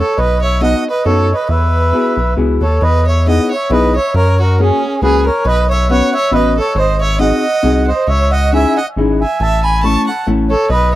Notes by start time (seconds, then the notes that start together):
0.00 A4 C#5
0.18 B1 B4 D#5
0.42 C#5 E5
0.61 B3 D#4 F#4 A4 D#5 F#5
0.90 B4 D#5
1.05 F#2 B3 D#4 F#4 A4 C#5
1.34 B4 D#5
1.49 E2 B4 E5
1.93 B3 E4 F#4 G#4
2.17 B1
2.37 C#2 B3 E4 F#4 G#4
2.61 D#2 A4 C#5
2.82 E2 B4 D#5
3.08 C#5 E5
3.27 B3 D#4 E4 G#4 D#5 F#5
3.51 C#5 E5
3.70 B1 B3 D#4 E4 G#4 B4 D#5
3.95 C#5 E5
4.14 F#2 A#4 C#5
4.40 F#4 A#4
4.58 A#3 C#4 F#4 G#4
5.02 C#2 A#3 C#4 F#4 G#4 B4
5.25 A#4 C#5
5.45 B1 B4 D#5
5.69 C#5 E5
5.90 B3 C#4 F#4 B4 C#5 F#5
6.12 C#5 E5
6.31 A1 B3 C#4 F#4 B4 D#5
6.35 B4
6.58 A4 C#5
6.75 G#1 C5
6.80 D#5
6.99 C#5 E5
7.19 C4 D#4 F#4 G#4 D#5 F#5
7.63 C2 C4 D#4 F#4 G#4
7.88 C5 D#5
8.08 C#2 C#5 E5
8.31 D#5 F#5
8.53 C#4 D#4 E4 G#4 E5 G#5
8.77 D#5 F#5
8.97 G#1 C#4 D#4 E4 G#4
9.21 E5 G#5
9.40 A1 E5 A5
9.64 G#5 B5
9.84 A3 C#4 E4 A4 A5 C#6
10.07 F#5 A5
10.27 A1 A3 C#4 E4 A4
10.50 A4 C#5
10.70 B1 B4 D#5